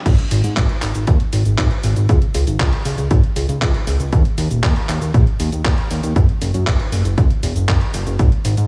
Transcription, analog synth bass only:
0, 0, Header, 1, 2, 480
1, 0, Start_track
1, 0, Tempo, 508475
1, 55, Time_signature, 4, 2, 24, 8
1, 8186, End_track
2, 0, Start_track
2, 0, Title_t, "Analog synth bass"
2, 0, Program_c, 0, 38
2, 55, Note_on_c, 0, 32, 104
2, 153, Note_off_c, 0, 32, 0
2, 295, Note_on_c, 0, 32, 97
2, 393, Note_off_c, 0, 32, 0
2, 414, Note_on_c, 0, 44, 78
2, 513, Note_off_c, 0, 44, 0
2, 534, Note_on_c, 0, 32, 105
2, 633, Note_off_c, 0, 32, 0
2, 775, Note_on_c, 0, 32, 92
2, 873, Note_off_c, 0, 32, 0
2, 896, Note_on_c, 0, 32, 83
2, 994, Note_off_c, 0, 32, 0
2, 1015, Note_on_c, 0, 39, 106
2, 1113, Note_off_c, 0, 39, 0
2, 1255, Note_on_c, 0, 32, 94
2, 1353, Note_off_c, 0, 32, 0
2, 1375, Note_on_c, 0, 32, 81
2, 1473, Note_off_c, 0, 32, 0
2, 1494, Note_on_c, 0, 32, 105
2, 1593, Note_off_c, 0, 32, 0
2, 1734, Note_on_c, 0, 32, 91
2, 1832, Note_off_c, 0, 32, 0
2, 1853, Note_on_c, 0, 32, 83
2, 1952, Note_off_c, 0, 32, 0
2, 1975, Note_on_c, 0, 37, 101
2, 2073, Note_off_c, 0, 37, 0
2, 2213, Note_on_c, 0, 37, 96
2, 2312, Note_off_c, 0, 37, 0
2, 2333, Note_on_c, 0, 32, 78
2, 2432, Note_off_c, 0, 32, 0
2, 2454, Note_on_c, 0, 37, 104
2, 2553, Note_off_c, 0, 37, 0
2, 2693, Note_on_c, 0, 37, 93
2, 2792, Note_off_c, 0, 37, 0
2, 2814, Note_on_c, 0, 37, 83
2, 2912, Note_off_c, 0, 37, 0
2, 2934, Note_on_c, 0, 32, 104
2, 3033, Note_off_c, 0, 32, 0
2, 3172, Note_on_c, 0, 37, 96
2, 3272, Note_off_c, 0, 37, 0
2, 3292, Note_on_c, 0, 37, 81
2, 3392, Note_off_c, 0, 37, 0
2, 3414, Note_on_c, 0, 37, 105
2, 3513, Note_off_c, 0, 37, 0
2, 3653, Note_on_c, 0, 37, 91
2, 3752, Note_off_c, 0, 37, 0
2, 3773, Note_on_c, 0, 37, 81
2, 3872, Note_off_c, 0, 37, 0
2, 3894, Note_on_c, 0, 39, 104
2, 3993, Note_off_c, 0, 39, 0
2, 4133, Note_on_c, 0, 39, 98
2, 4232, Note_off_c, 0, 39, 0
2, 4254, Note_on_c, 0, 27, 80
2, 4353, Note_off_c, 0, 27, 0
2, 4374, Note_on_c, 0, 39, 101
2, 4473, Note_off_c, 0, 39, 0
2, 4614, Note_on_c, 0, 39, 95
2, 4713, Note_off_c, 0, 39, 0
2, 4734, Note_on_c, 0, 39, 82
2, 4833, Note_off_c, 0, 39, 0
2, 4855, Note_on_c, 0, 34, 103
2, 4953, Note_off_c, 0, 34, 0
2, 5095, Note_on_c, 0, 39, 102
2, 5193, Note_off_c, 0, 39, 0
2, 5216, Note_on_c, 0, 39, 81
2, 5314, Note_off_c, 0, 39, 0
2, 5335, Note_on_c, 0, 39, 106
2, 5433, Note_off_c, 0, 39, 0
2, 5577, Note_on_c, 0, 39, 93
2, 5674, Note_off_c, 0, 39, 0
2, 5696, Note_on_c, 0, 39, 84
2, 5794, Note_off_c, 0, 39, 0
2, 5815, Note_on_c, 0, 30, 107
2, 5913, Note_off_c, 0, 30, 0
2, 6056, Note_on_c, 0, 30, 97
2, 6153, Note_off_c, 0, 30, 0
2, 6175, Note_on_c, 0, 42, 79
2, 6273, Note_off_c, 0, 42, 0
2, 6295, Note_on_c, 0, 30, 99
2, 6393, Note_off_c, 0, 30, 0
2, 6533, Note_on_c, 0, 30, 93
2, 6632, Note_off_c, 0, 30, 0
2, 6653, Note_on_c, 0, 30, 84
2, 6752, Note_off_c, 0, 30, 0
2, 6775, Note_on_c, 0, 37, 101
2, 6873, Note_off_c, 0, 37, 0
2, 7014, Note_on_c, 0, 28, 97
2, 7112, Note_off_c, 0, 28, 0
2, 7134, Note_on_c, 0, 30, 81
2, 7233, Note_off_c, 0, 30, 0
2, 7254, Note_on_c, 0, 30, 103
2, 7353, Note_off_c, 0, 30, 0
2, 7494, Note_on_c, 0, 30, 91
2, 7593, Note_off_c, 0, 30, 0
2, 7614, Note_on_c, 0, 30, 84
2, 7713, Note_off_c, 0, 30, 0
2, 7735, Note_on_c, 0, 32, 105
2, 7833, Note_off_c, 0, 32, 0
2, 7974, Note_on_c, 0, 32, 92
2, 8073, Note_off_c, 0, 32, 0
2, 8094, Note_on_c, 0, 44, 77
2, 8186, Note_off_c, 0, 44, 0
2, 8186, End_track
0, 0, End_of_file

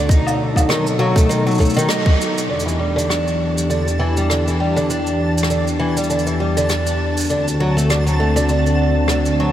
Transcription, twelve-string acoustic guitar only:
0, 0, Header, 1, 2, 480
1, 0, Start_track
1, 0, Key_signature, 1, "minor"
1, 0, Tempo, 600000
1, 76, Time_signature, 4, 2, 24, 8
1, 7618, End_track
2, 0, Start_track
2, 0, Title_t, "Twelve-string acoustic guitar"
2, 0, Program_c, 0, 25
2, 71, Note_on_c, 0, 63, 73
2, 543, Note_off_c, 0, 63, 0
2, 551, Note_on_c, 0, 51, 80
2, 681, Note_off_c, 0, 51, 0
2, 792, Note_on_c, 0, 54, 99
2, 922, Note_off_c, 0, 54, 0
2, 930, Note_on_c, 0, 57, 73
2, 1025, Note_off_c, 0, 57, 0
2, 1034, Note_on_c, 0, 51, 78
2, 1156, Note_off_c, 0, 51, 0
2, 1172, Note_on_c, 0, 54, 77
2, 1266, Note_off_c, 0, 54, 0
2, 1279, Note_on_c, 0, 57, 75
2, 1398, Note_off_c, 0, 57, 0
2, 1412, Note_on_c, 0, 51, 95
2, 1506, Note_off_c, 0, 51, 0
2, 1514, Note_on_c, 0, 63, 76
2, 1984, Note_off_c, 0, 63, 0
2, 1995, Note_on_c, 0, 50, 58
2, 2116, Note_off_c, 0, 50, 0
2, 2126, Note_on_c, 0, 52, 59
2, 2223, Note_off_c, 0, 52, 0
2, 2233, Note_on_c, 0, 55, 58
2, 2355, Note_off_c, 0, 55, 0
2, 2368, Note_on_c, 0, 50, 83
2, 2464, Note_off_c, 0, 50, 0
2, 2475, Note_on_c, 0, 62, 62
2, 2945, Note_off_c, 0, 62, 0
2, 2958, Note_on_c, 0, 50, 64
2, 3084, Note_off_c, 0, 50, 0
2, 3195, Note_on_c, 0, 52, 82
2, 3323, Note_off_c, 0, 52, 0
2, 3334, Note_on_c, 0, 55, 61
2, 3427, Note_off_c, 0, 55, 0
2, 3441, Note_on_c, 0, 50, 61
2, 3560, Note_off_c, 0, 50, 0
2, 3581, Note_on_c, 0, 52, 62
2, 3671, Note_off_c, 0, 52, 0
2, 3680, Note_on_c, 0, 55, 58
2, 3799, Note_off_c, 0, 55, 0
2, 3811, Note_on_c, 0, 50, 95
2, 3906, Note_off_c, 0, 50, 0
2, 3918, Note_on_c, 0, 62, 61
2, 4386, Note_off_c, 0, 62, 0
2, 4401, Note_on_c, 0, 50, 66
2, 4526, Note_off_c, 0, 50, 0
2, 4636, Note_on_c, 0, 52, 92
2, 4763, Note_off_c, 0, 52, 0
2, 4774, Note_on_c, 0, 55, 69
2, 4867, Note_off_c, 0, 55, 0
2, 4879, Note_on_c, 0, 50, 65
2, 4998, Note_off_c, 0, 50, 0
2, 5014, Note_on_c, 0, 52, 64
2, 5107, Note_off_c, 0, 52, 0
2, 5121, Note_on_c, 0, 55, 63
2, 5239, Note_off_c, 0, 55, 0
2, 5255, Note_on_c, 0, 50, 84
2, 5348, Note_off_c, 0, 50, 0
2, 5361, Note_on_c, 0, 62, 63
2, 5828, Note_off_c, 0, 62, 0
2, 5839, Note_on_c, 0, 50, 70
2, 5965, Note_off_c, 0, 50, 0
2, 6082, Note_on_c, 0, 54, 83
2, 6207, Note_off_c, 0, 54, 0
2, 6214, Note_on_c, 0, 57, 72
2, 6307, Note_off_c, 0, 57, 0
2, 6317, Note_on_c, 0, 50, 72
2, 6437, Note_off_c, 0, 50, 0
2, 6451, Note_on_c, 0, 54, 60
2, 6546, Note_off_c, 0, 54, 0
2, 6559, Note_on_c, 0, 57, 64
2, 6678, Note_off_c, 0, 57, 0
2, 6689, Note_on_c, 0, 50, 91
2, 6784, Note_off_c, 0, 50, 0
2, 6796, Note_on_c, 0, 62, 69
2, 7265, Note_off_c, 0, 62, 0
2, 7278, Note_on_c, 0, 50, 66
2, 7404, Note_off_c, 0, 50, 0
2, 7518, Note_on_c, 0, 54, 84
2, 7618, Note_off_c, 0, 54, 0
2, 7618, End_track
0, 0, End_of_file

